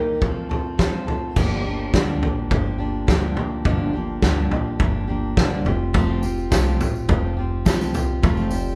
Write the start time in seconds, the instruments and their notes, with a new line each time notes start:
Already playing: steel-string acoustic guitar D#3 A#3 D#4 G4
0.21 steel-string acoustic guitar F2 F3 A3 C4 F4 A4, kick, floor tom
0.49 steel-string acoustic guitar C4 F4 A4, floor tom
0.78 steel-string acoustic guitar F3 C4 F4 A4, kick, snare, floor tom
1.07 steel-string acoustic guitar A3 C4 F4 A4, floor tom
1.36 upright bass G1, steel-string acoustic guitar G2 D3 F3 A#3 D4 G4, kick, floor tom, crash
1.65 steel-string acoustic guitar F3 A#3 D4 G4
1.93 upright bass D2, steel-string acoustic guitar G2 D3 F3 A#3 D4 G4, kick, snare
2.21 upright bass A#1, steel-string acoustic guitar F3 A#3 D4 G4, floor tom
2.50 upright bass G1, steel-string acoustic guitar F3 A#3 D4 G4, kick, floor tom
2.78 steel-string acoustic guitar F3 A#3 D4 G4
3.07 upright bass D2, steel-string acoustic guitar G2 D3 F3 A#3 D4 G4, kick, snare
3.36 steel-string acoustic guitar F3 A#3 D4 G4, floor tom
3.65 upright bass G1, steel-string acoustic guitar G2 D3 F3 A#3 D4 G4, kick, floor tom
3.93 steel-string acoustic guitar F3 A#3 D4 G4
4.22 upright bass D2, steel-string acoustic guitar G2 D3 F3 A#3 D4 G4, kick, snare
4.49 upright bass A#1, steel-string acoustic guitar A#3 D4 G4, floor tom
4.54 steel-string acoustic guitar F3
4.79 upright bass G1, steel-string acoustic guitar F3 A#3 D4 G4, kick, floor tom
5.07 steel-string acoustic guitar F3 A#3 D4 G4
5.37 upright bass C2, steel-string acoustic guitar G2 D3 F3 A#3 D4 G4, kick, snare
5.65 upright bass F1, steel-string acoustic guitar F4 G4, floor tom
5.69 steel-string acoustic guitar C4
5.93 steel-string acoustic guitar F3 A3 C4 F4 G4, kick, floor tom, tambourine
6.22 steel-string acoustic guitar C4 F4 G4, tambourine
6.38 tambourine
6.50 upright bass C2, steel-string acoustic guitar F3 A3 C4 F4 G4, kick, snare, tambourine
6.66 tambourine
6.79 upright bass A1, steel-string acoustic guitar C4 F4 G4, floor tom, tambourine
6.95 tambourine
7.08 upright bass F1, steel-string acoustic guitar A3 C4 F4 G4, kick, floor tom
7.37 steel-string acoustic guitar C4 F4 G4
7.65 upright bass C2, steel-string acoustic guitar F3 A3 C4 F4 G4, kick, snare, tambourine
7.81 tambourine
7.94 steel-string acoustic guitar C4 F4 G4, floor tom, tambourine
8.23 upright bass F1, steel-string acoustic guitar F3 A3 C4 F4 G4, kick, floor tom, tambourine
8.37 tambourine
8.51 steel-string acoustic guitar C4 F4 G4, tambourine
8.66 tambourine